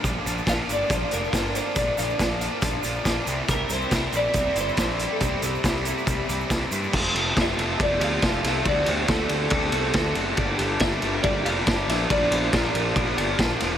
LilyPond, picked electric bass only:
\new Staff \with { instrumentName = "Picked electric bass" } { \clef bass \time 4/4 \key bes \lydian \tempo 4 = 139 bes,,8 bes,,8 bes,,8 g,,8 bes,,8 f,,8 g,,4 | bes,,8 bes,,8 bes,,4 bes,,8 bes,,8 bes,,8 c,8 | c,8 c,8 c,8 bes,,8 c,8 g,,8 bes,,4 | c,8 c,8 c,4 c,8 c,8 c,8 g,8 |
f,,8 f,,8 f,,8 f,,8 f,,8 d,8 f,,8 c,8 | d,8 d,8 d,8 d,8 d,8 c,8 d,8 fis,,8 | g,,8 g,,8 g,,8 g,,8 g,,8 f,,8 g,,8 bes,,8 | bes,,8 bes,,8 bes,,8 bes,,8 bes,,8 g,,8 bes,,8 e,,8 | }